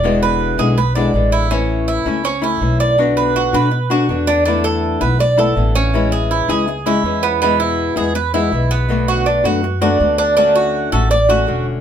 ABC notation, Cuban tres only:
X:1
M:4/4
L:1/8
Q:1/4=162
K:A
V:1 name="Cuban tres"
d B2 G B d2 E | C2 E2 C E2 d | z B F B2 F2 D | D A2 B d A2 C- |
C G E G2 E2 B, | B, E2 G B E2 B,- | B, F D F2 D2 D | D F2 A d F2 z |]